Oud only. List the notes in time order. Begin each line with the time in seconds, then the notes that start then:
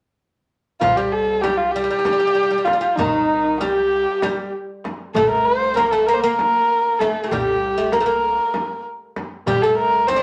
0.81 F3
0.97 G3
1.44 G3
1.76 G3
1.84 G3
1.90 G3
1.99 G3
2.06 G3
2.13 G3
2.20 G3
2.27 G3
2.35 G3
2.43 G3
2.50 G3
2.58 G3
2.65 G3
2.73 G3
2.81 G3
2.99 D#3
3.61 G3
4.23 G3
5.16 A3
5.74 A#3 C4
5.93 A3
6.08 A#3
6.24 A#3
7.01 A3
7.24 A3
7.32 G3
7.78 A3
7.93 A#3
8.00 A3
8.06 A#3
9.47 G3
9.63 A3
10.08 C4
10.16 D4